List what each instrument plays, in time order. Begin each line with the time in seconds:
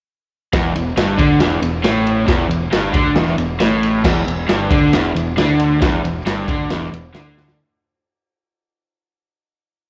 0.53 fingered electric bass E1, overdriven electric guitar E2, kick, snare, ride
0.76 fingered electric bass E1, overdriven electric guitar E2, ride
0.96 fingered electric bass G1, overdriven electric guitar G2, snare, ride
1.18 fingered electric bass D2, overdriven electric guitar D3, kick, ride
1.40 fingered electric bass E1, overdriven electric guitar E2, snare, ride
1.61 fingered electric bass E1, overdriven electric guitar E2, ride
1.84 fingered electric bass A1, overdriven electric guitar A2, snare, ride
2.07 ride
2.26 fingered electric bass E1, overdriven electric guitar E2, kick, snare, ride
2.50 fingered electric bass E1, overdriven electric guitar E2, ride
2.72 fingered electric bass G1, overdriven electric guitar G2, snare, ride
2.93 fingered electric bass D2, overdriven electric guitar D3, kick, ride
3.14 fingered electric bass E1, overdriven electric guitar E2, snare, ride
3.37 fingered electric bass E1, overdriven electric guitar E2, ride
3.60 fingered electric bass A1, overdriven electric guitar A2, snare, ride
3.83 ride
4.04 fingered electric bass E1, overdriven electric guitar E2, kick, snare, crash
4.25 fingered electric bass E1, overdriven electric guitar E2, ride
4.47 fingered electric bass G1, overdriven electric guitar G2, snare, ride
4.70 fingered electric bass D2, overdriven electric guitar D3, kick, ride
4.92 fingered electric bass E1, overdriven electric guitar E2, snare, ride
5.15 fingered electric bass E1, overdriven electric guitar E2, ride
5.37 fingered electric bass D2, overdriven electric guitar D3, snare, ride
5.59 ride
5.81 fingered electric bass E1, overdriven electric guitar E2, kick, snare, ride
6.02 fingered electric bass E1, overdriven electric guitar E2, ride
6.25 fingered electric bass G1, overdriven electric guitar G2, snare, ride
6.48 fingered electric bass D2, overdriven electric guitar D3, kick, ride
6.69 fingered electric bass E1, overdriven electric guitar E2, snare, ride
6.92 fingered electric bass E1, overdriven electric guitar E2, ride
7.14 fingered electric bass D2, overdriven electric guitar D3, snare, ride
7.37 snare
7.48 snare